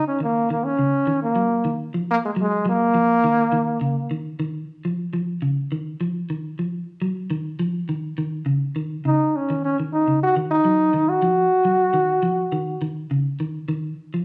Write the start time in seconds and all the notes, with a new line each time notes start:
0.08 C#4
0.20 D#3 A#3
0.50 D#3 A#3
0.64 C#4
0.79 C#3
1.07 D#3
1.23 A#3
1.36 F#3
1.65 D#3
1.94 F3
2.10 A#3
2.25 G#3
2.36 F#3
2.41 G#3
2.65 F#3 A#3
2.94 F3
3.24 D#3
3.52 D#3
3.81 C#3
4.11 D#3
4.40 D#3
4.85 F3
5.13 F3
5.42 C#3
5.72 D#3
6.01 F3
6.30 D#3
6.59 F3
7.02 F#3
7.30 D#3
7.59 F3
7.89 D#3
8.18 D#3
8.46 C#3
8.76 D#3
9.05 C#3 D#4
9.36 C#4
9.50 D#3
9.64 C#4
9.80 D#3
9.93 D#4
10.08 C#3
10.23 F#4
10.36 D#3
10.51 D#4
10.65 F#3
10.94 D#3
11.09 F#4
11.22 F3
11.65 F#3
11.94 D#3
12.23 F3
12.52 D#3
12.82 D#3
13.11 C#3
13.40 D#3
13.68 D#3
14.14 F3